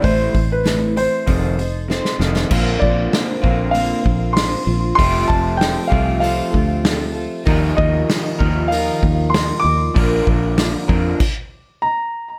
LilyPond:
<<
  \new Staff \with { instrumentName = "Grand piano" } { \time 4/4 \key f \lydian \tempo 4 = 97 c''8. b'8. c''4. r4 | \key bes \lydian r8 d''4. f''4 c'''4 | c'''8 a''8 g''8 f''8 f''4. r8 | r8 ees''4. f''4 c'''8 d'''8~ |
d'''2. bes''4 | }
  \new Staff \with { instrumentName = "Twelve-string acoustic guitar" } { \time 4/4 \key f \lydian <a, e a c' e' c''>8 <a c' e' c''>8 <a, e a c' e'>8 <a c' e' c''>8 <c' ees' a' c''>8 <ees' a' c''>8 <f c' ees' a' c''>8 <ees' a' c''>8 | \key bes \lydian <bes, d bes c' f' c''>8 <bes c' f' c''>8 <bes c' f' c''>8 <bes c' f' c''>8 <bes, d bes c' f' c''>8 <bes c' f' c''>8 <bes c' f' c''>8 <bes c' f' c''>8 | <f g c' f' a'>8 <c' f' a'>8 <g c' f' a'>8 <c' f' a'>8 <f g c' f' a'>8 <c' f' a'>8 <g c' f' a'>8 <c' f' a'>8 | <ees g ees' f' bes'>8 <ees' f' bes'>8 <g ees' f' bes'>8 <ees' f' bes'>8 <ees g ees' f' bes'>8 <ees' f' bes'>8 <g ees' f' bes'>8 <ees' f' bes'>8 |
<bes, f bes d' f' bes'>8 <bes d' f' bes'>8 <bes d' f' bes'>8 <bes d' f' bes'>8 r2 | }
  \new Staff \with { instrumentName = "Clean electric guitar" } { \clef bass \time 4/4 \key f \lydian <a, e a>8 <a, e>8 <a, e>8 <a, e>8 <f, c ees>8 <f, c>8 <f, c>8 <f, c ees>8 | \key bes \lydian <bes, d bes c' f'>4. <bes, d bes c' f'>2~ <bes, d bes c' f'>8 | <f a c' g'>4. <f a c' g'>2~ <f a c' g'>8 | <ees f g ees' bes'>4. <ees f g ees' bes'>2~ <ees f g ees' bes'>8 |
<bes, d f bes d' bes'>4. <bes, d f bes d' bes'>8 r2 | }
  \new Staff \with { instrumentName = "Fingered electric bass" } { \clef bass \time 4/4 \key f \lydian a,,8 a,,4. f,,4. f,,8 | \key bes \lydian bes,,8 bes,,8 r8 bes,,4 bes,,4 bes,,8 | f,,8 f,,4 c,4 d,4. | ees,8 ees,8 r8 ees,4 ees,4 ees,8 |
bes,,8 bes,,4 f,8 r2 | }
  \new DrumStaff \with { instrumentName = "Drums" } \drummode { \time 4/4 <hho bd>8 <hho bd>8 <hho sn>8 hho8 <hho bd>8 hho8 sn16 sn16 sn16 sn16 | <cymc bd>8 bd8 <hho sn>8 bd8 hho8 bd8 <hho sn>4 | <hho bd>8 bd8 <hho sn>8 bd8 hho8 bd8 <hho sn>4 | <hho bd>8 bd8 <hho sn>8 bd8 hho8 bd8 <hho sn>4 |
<hho bd>8 bd8 <hho sn>8 bd8 <cymc bd>4 r4 | }
>>